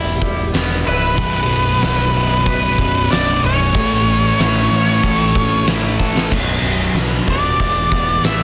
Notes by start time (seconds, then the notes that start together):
Already playing: E1 E2 G3 B3 E4
0.21 E1 G3, kick
0.53 E1 B3, snare, open hi-hat
0.85 C#1 E4 B4
1.16 B0 B1 F#2 B2, kick, open hi-hat
1.49 B2
1.81 B0 F#3, snare, open hi-hat
2.14 B0 B2
2.46 B0 B4, kick, open hi-hat
2.78 B0 B2, kick
3.09 B0 F#3 D5, snare, open hi-hat
3.41 B0 C#4 C#5
3.74 A1 A2 E3 A3, kick, open hi-hat
4.07 C#4
4.39 A1 E4, snare, open hi-hat
4.71 A1 C#4
5.03 A1 A4, kick, open hi-hat
5.35 A1 C#4, kick
5.67 A1 E4, snare, open hi-hat
5.99 A1 A4, kick
6.17 snare
6.30 B0 B1 F#2 B2, kick, crash
6.62 B0 F#2, open hi-hat
6.94 B1 F#2 B2, snare, open hi-hat
7.27 D#1 B1 F#2 B2 F#3 D5, kick, open hi-hat
7.60 E1 E2 B2 E3, kick, open hi-hat
7.92 E1 B3, kick, open hi-hat
8.23 A1 E2 B2 E3 G3 E5, snare, open hi-hat